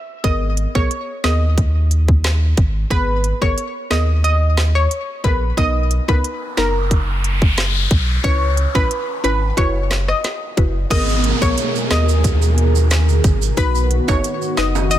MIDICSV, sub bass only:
0, 0, Header, 1, 2, 480
1, 0, Start_track
1, 0, Key_signature, 5, "minor"
1, 0, Tempo, 666667
1, 175, Time_signature, 4, 2, 24, 8
1, 10792, End_track
2, 0, Start_track
2, 0, Title_t, "Sub bass"
2, 0, Program_c, 0, 38
2, 174, Note_on_c, 0, 32, 102
2, 478, Note_off_c, 0, 32, 0
2, 541, Note_on_c, 0, 35, 88
2, 635, Note_off_c, 0, 35, 0
2, 895, Note_on_c, 0, 39, 92
2, 1826, Note_off_c, 0, 39, 0
2, 1854, Note_on_c, 0, 32, 91
2, 2053, Note_off_c, 0, 32, 0
2, 2094, Note_on_c, 0, 32, 114
2, 2398, Note_off_c, 0, 32, 0
2, 2462, Note_on_c, 0, 32, 96
2, 2555, Note_off_c, 0, 32, 0
2, 2815, Note_on_c, 0, 39, 95
2, 3506, Note_off_c, 0, 39, 0
2, 3775, Note_on_c, 0, 34, 85
2, 3974, Note_off_c, 0, 34, 0
2, 4015, Note_on_c, 0, 35, 108
2, 4319, Note_off_c, 0, 35, 0
2, 4383, Note_on_c, 0, 37, 95
2, 4476, Note_off_c, 0, 37, 0
2, 4736, Note_on_c, 0, 30, 96
2, 5666, Note_off_c, 0, 30, 0
2, 5694, Note_on_c, 0, 35, 97
2, 5893, Note_off_c, 0, 35, 0
2, 5934, Note_on_c, 0, 37, 105
2, 6239, Note_off_c, 0, 37, 0
2, 6302, Note_on_c, 0, 34, 90
2, 6395, Note_off_c, 0, 34, 0
2, 6654, Note_on_c, 0, 32, 84
2, 6853, Note_off_c, 0, 32, 0
2, 6894, Note_on_c, 0, 30, 105
2, 7292, Note_off_c, 0, 30, 0
2, 7615, Note_on_c, 0, 30, 99
2, 7813, Note_off_c, 0, 30, 0
2, 7854, Note_on_c, 0, 32, 105
2, 8158, Note_off_c, 0, 32, 0
2, 8221, Note_on_c, 0, 35, 92
2, 8315, Note_off_c, 0, 35, 0
2, 8574, Note_on_c, 0, 39, 94
2, 9506, Note_off_c, 0, 39, 0
2, 9535, Note_on_c, 0, 32, 90
2, 9733, Note_off_c, 0, 32, 0
2, 9775, Note_on_c, 0, 35, 105
2, 10079, Note_off_c, 0, 35, 0
2, 10142, Note_on_c, 0, 32, 100
2, 10235, Note_off_c, 0, 32, 0
2, 10494, Note_on_c, 0, 30, 82
2, 10792, Note_off_c, 0, 30, 0
2, 10792, End_track
0, 0, End_of_file